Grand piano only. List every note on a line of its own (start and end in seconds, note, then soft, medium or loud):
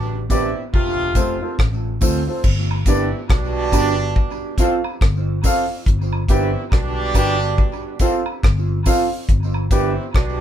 0.30 0.48 D4 medium
0.30 0.48 G4 medium
0.30 0.49 B4 medium
0.30 0.49 D5 loud
1.15 1.34 C4 medium
1.15 1.34 F4 medium
1.15 1.34 A4 medium
1.15 1.34 C5 loud
1.41 1.53 C4 medium
1.41 1.53 F4 medium
1.41 1.54 A4 medium
1.41 1.54 C5 medium
2.02 2.20 C4 medium
2.02 2.20 F4 medium
2.02 2.20 A4 medium
2.02 2.20 C5 loud
2.27 2.39 C4 medium
2.27 2.39 F4 medium
2.27 2.40 A4 medium
2.27 2.40 C5 medium
2.88 3.05 D4 medium
2.88 3.06 G4 medium
2.88 3.06 B4 medium
2.88 3.06 D5 loud
3.73 3.91 D4 medium
3.73 3.91 G4 medium
3.73 3.91 B4 medium
3.73 3.91 D5 medium
4.59 4.77 F4 medium
4.59 4.77 A4 medium
4.59 4.77 C5 medium
4.59 4.77 F5 loud
5.44 5.62 F4 medium
5.44 5.62 A4 medium
5.44 5.62 C5 medium
5.44 5.63 F5 loud
6.30 6.48 G4 medium
6.30 6.48 B4 medium
6.30 6.48 D5 medium
6.30 6.48 G5 loud
7.15 7.33 G4 medium
7.15 7.33 B4 medium
7.15 7.33 D5 medium
7.15 7.34 G5 loud
8.00 8.19 F4 medium
8.00 8.19 A4 medium
8.00 8.19 C5 medium
8.00 8.19 F5 loud
8.86 9.04 F4 medium
8.86 9.04 A4 medium
8.86 9.04 C5 medium
8.86 9.05 F5 loud
9.72 9.90 G4 medium
9.72 9.90 B4 medium
9.72 9.90 D5 medium
9.72 9.90 G5 loud